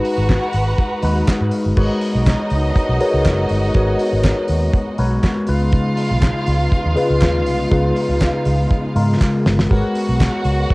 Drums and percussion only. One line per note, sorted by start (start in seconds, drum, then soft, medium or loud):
0.05 open hi-hat medium
0.29 kick loud
0.29 snare loud
0.29 clap medium
0.29 closed hi-hat medium
0.53 open hi-hat medium
0.78 kick loud
0.78 closed hi-hat medium
1.02 open hi-hat medium
1.28 kick loud
1.28 snare loud
1.28 clap loud
1.28 closed hi-hat medium
1.51 open hi-hat medium
1.77 kick loud
1.77 crash medium
2.01 open hi-hat medium
2.26 kick loud
2.26 snare loud
2.26 clap medium
2.26 closed hi-hat medium
2.50 open hi-hat medium
2.76 kick loud
2.76 closed hi-hat medium
3.00 open hi-hat medium
3.25 kick loud
3.25 snare loud
3.25 clap loud
3.25 closed hi-hat medium
3.49 open hi-hat medium
3.74 kick loud
3.74 closed hi-hat medium
3.99 open hi-hat medium
4.24 kick loud
4.24 snare loud
4.24 clap medium
4.24 closed hi-hat medium
4.48 open hi-hat medium
4.73 kick loud
4.73 closed hi-hat medium
4.98 open hi-hat medium
5.23 kick loud
5.23 snare loud
5.23 clap loud
5.23 closed hi-hat medium
5.47 open hi-hat medium
5.72 kick loud
5.72 closed hi-hat medium
5.97 open hi-hat medium
6.22 kick loud
6.22 snare loud
6.22 clap medium
6.22 closed hi-hat medium
6.46 open hi-hat medium
6.72 kick loud
6.72 closed hi-hat medium
6.97 open hi-hat medium
7.21 kick loud
7.21 snare loud
7.21 clap loud
7.46 open hi-hat medium
7.71 kick loud
7.71 closed hi-hat medium
7.96 open hi-hat medium
8.21 kick loud
8.21 snare loud
8.21 clap medium
8.21 closed hi-hat medium
8.45 open hi-hat medium
8.71 kick loud
8.71 closed hi-hat medium
8.96 open hi-hat medium
9.21 kick loud
9.21 snare medium
9.21 clap loud
9.46 snare loud
9.59 snare loud
9.71 kick loud
9.71 splash medium
9.95 open hi-hat medium
10.20 kick loud
10.20 snare loud
10.20 clap medium
10.20 closed hi-hat medium
10.44 open hi-hat medium
10.70 kick loud
10.70 closed hi-hat medium